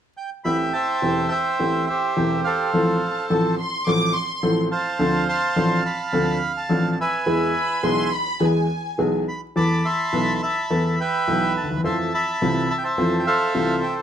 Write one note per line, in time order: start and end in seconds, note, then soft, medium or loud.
0.17 0.30 G5 medium
0.44 0.69 A1 medium
0.44 0.69 A2 medium
0.44 0.69 E3 medium
0.44 0.69 A3 medium
0.44 0.69 C4 medium
0.44 0.70 G4 medium
0.44 0.73 E5 medium
0.44 1.27 G5 medium
0.44 0.57 B5 medium
0.73 1.29 C5 medium
0.73 1.29 E5 medium
0.73 1.32 A5 medium
1.02 1.26 E1 medium
1.02 1.27 E2 medium
1.02 1.26 E3 medium
1.02 1.27 A3 medium
1.02 1.27 C4 medium
1.02 1.27 G4 medium
1.29 1.88 C5 medium
1.29 1.85 E5 medium
1.29 1.89 G5 medium
1.59 1.84 A1 medium
1.59 1.84 A2 medium
1.59 1.84 E3 medium
1.59 1.84 A3 medium
1.59 1.84 C4 medium
1.59 1.84 G4 medium
1.87 2.70 G4 medium
1.87 2.45 C5 medium
1.87 2.41 E5 medium
2.16 2.41 E1 medium
2.16 2.41 E2 medium
2.16 2.41 E3 medium
2.16 2.41 A3 medium
2.16 2.41 C4 medium
2.16 2.41 G4 medium
2.44 3.55 A4 medium
2.44 3.55 C5 medium
2.44 3.26 F5 medium
2.74 2.97 A1 medium
2.74 2.98 A2 medium
2.74 2.97 F3 medium
2.74 2.98 A3 medium
2.74 2.98 C4 medium
2.74 2.98 A4 medium
3.02 3.55 A5 medium
3.30 3.54 A1 medium
3.30 3.54 A2 medium
3.30 3.54 F3 medium
3.30 3.54 A3 medium
3.30 3.54 C4 medium
3.30 3.54 A4 medium
3.59 3.87 C6 medium
3.87 4.11 A1 medium
3.87 4.11 A2 medium
3.87 4.11 F3 medium
3.87 4.11 A3 medium
3.87 4.11 C4 medium
3.87 4.11 A4 medium
3.87 4.15 D6 medium
4.15 4.57 C6 medium
4.43 4.67 A1 medium
4.43 4.67 A2 medium
4.43 4.67 F3 medium
4.43 4.67 A3 medium
4.43 4.67 C4 medium
4.43 4.67 A4 medium
4.71 5.81 C5 medium
4.71 5.27 F5 medium
4.71 5.24 A5 medium
4.99 5.23 D2 medium
4.99 5.23 D3 medium
4.99 5.23 F3 medium
4.99 5.23 C4 medium
4.99 5.24 D4 medium
4.99 5.24 A4 medium
5.29 5.84 F5 medium
5.29 6.38 A5 medium
5.29 5.81 C6 medium
5.56 5.80 A1 medium
5.56 5.80 A2 medium
5.56 5.80 F3 medium
5.56 5.80 C4 medium
5.56 5.80 D4 medium
5.56 5.80 A4 medium
5.85 6.95 F5 medium
5.85 6.52 B5 medium
6.13 6.37 D2 medium
6.13 6.37 D3 medium
6.13 6.37 F3 medium
6.13 6.37 C4 medium
6.13 6.37 D4 medium
6.13 6.37 A4 medium
6.57 6.90 A5 medium
6.69 6.94 A1 medium
6.69 6.94 A2 medium
6.69 6.93 F3 medium
6.69 6.94 C4 medium
6.69 6.94 D4 medium
6.69 6.94 A4 medium
6.92 6.99 A5 medium
7.00 8.09 B4 medium
7.00 8.09 E5 medium
7.00 8.09 G#5 medium
7.26 7.51 E2 medium
7.26 7.50 E3 medium
7.26 7.51 G#3 medium
7.26 7.50 B3 medium
7.26 7.51 G#4 medium
7.55 7.82 B5 medium
7.83 8.07 B1 medium
7.83 8.08 B2 medium
7.83 8.07 E3 medium
7.83 8.08 G#3 medium
7.83 8.08 B3 medium
7.83 8.08 G#4 medium
7.83 8.12 C6 medium
8.13 8.41 B5 medium
8.40 8.65 E2 medium
8.40 8.65 E3 medium
8.40 8.65 G#3 medium
8.40 8.65 B3 medium
8.40 8.65 G#4 medium
8.40 9.13 G#5 medium
8.98 9.23 B1 medium
8.98 9.23 B2 medium
8.98 9.22 E3 medium
8.98 9.23 G#3 medium
8.98 9.23 B3 medium
8.98 9.23 G#4 medium
9.28 9.41 B5 medium
9.56 9.80 E2 medium
9.56 9.80 E3 medium
9.56 9.80 A3 medium
9.56 9.80 B3 medium
9.56 9.80 A4 medium
9.56 9.84 A5 medium
9.56 10.41 B5 medium
9.56 9.86 D6 medium
9.85 10.41 E5 medium
9.85 10.95 A5 medium
9.85 10.34 C6 medium
10.13 10.37 B1 medium
10.13 10.37 B2 medium
10.13 10.37 E3 medium
10.13 10.37 A3 medium
10.13 10.37 B3 medium
10.13 10.37 A4 medium
10.35 10.42 C6 medium
10.43 10.99 E5 medium
10.43 11.01 B5 medium
10.70 10.94 E2 medium
10.70 10.94 E3 medium
10.70 10.94 A3 medium
10.70 10.95 B3 medium
10.70 10.94 A4 medium
11.00 11.81 B4 medium
11.00 11.81 E5 medium
11.00 11.53 G5 medium
11.28 11.51 B1 medium
11.28 11.52 B2 medium
11.28 11.51 E3 medium
11.28 11.51 A3 medium
11.28 11.52 B3 medium
11.28 11.52 A4 medium
11.57 11.70 A5 medium
11.64 11.70 D2 soft
11.71 11.78 D#2 soft
11.77 11.84 E2 medium
11.84 12.08 F2 medium
11.84 12.08 E3 medium
11.84 12.08 F3 medium
11.84 12.08 A3 medium
11.84 12.08 C4 medium
11.84 12.08 F4 medium
11.84 12.13 E5 medium
11.84 12.69 A5 medium
11.84 11.97 C6 medium
12.14 12.83 E5 medium
12.14 12.72 B5 medium
12.42 12.66 C2 medium
12.42 12.66 C3 medium
12.42 12.65 E3 medium
12.42 12.66 A3 medium
12.42 12.66 C4 medium
12.42 12.66 F4 medium
12.71 12.77 A5 medium
12.78 12.85 G5 medium
12.84 13.26 C5 medium
12.84 13.94 E5 medium
12.84 13.24 A5 medium
12.98 13.22 F2 medium
12.98 13.22 E3 medium
12.98 13.22 F3 medium
12.98 13.22 A3 medium
12.98 13.22 C4 medium
12.98 13.22 F4 medium
13.19 13.26 G5 medium
13.27 14.02 A4 medium
13.27 14.02 C5 medium
13.27 13.79 F5 medium
13.55 13.79 C2 medium
13.55 13.79 C3 medium
13.55 13.79 E3 medium
13.55 13.79 A3 medium
13.55 13.79 C4 medium
13.55 13.79 F4 medium
13.83 13.96 G5 medium